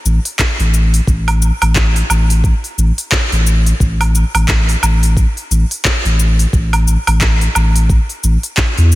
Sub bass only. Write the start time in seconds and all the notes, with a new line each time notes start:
0.05 A1
0.59 A1
1.07 A1
1.62 A1
2.10 A1
2.78 A1
3.32 A1
3.80 A1
4.35 A1
4.83 A1
5.51 A1
6.05 A1
6.53 A1
7.07 A1
7.56 A1
8.24 A1
8.78 E2